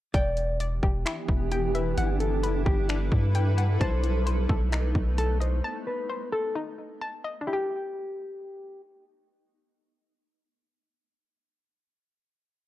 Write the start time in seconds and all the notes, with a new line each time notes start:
0.14 E1 E3 B3 D4 E4 G4 D5 G5, kick, closed hi-hat
0.37 closed hi-hat
0.60 D5, closed hi-hat
0.83 E1 G4, kick
1.06 E4, finger snap, closed hi-hat
1.29 E1, kick
1.52 G4 G5, closed hi-hat
1.75 B4 E5, closed hi-hat
1.97 G1 G3 A4 B4 F#5, closed hi-hat
2.20 A4, closed hi-hat
2.43 F#1 B4, closed hi-hat
2.66 G1 G4, kick
2.89 D4, finger snap, closed hi-hat
3.12 G2, kick
3.35 G5, closed hi-hat
3.58 F#5, closed hi-hat
3.81 B1 A3 B3 D#4 C5 A5, kick, closed hi-hat
4.03 closed hi-hat
4.26 C5, closed hi-hat
4.49 B1 A4, kick
4.72 D#4, finger snap, closed hi-hat
4.95 B1, kick
5.18 A4 A5, closed hi-hat
5.40 C5 D#5, closed hi-hat
5.64 A5
5.87 B4
6.09 C5
6.32 A4
6.55 D#4
7.01 A5
7.24 D#5
7.41 D4
7.47 E4 G4
7.53 G4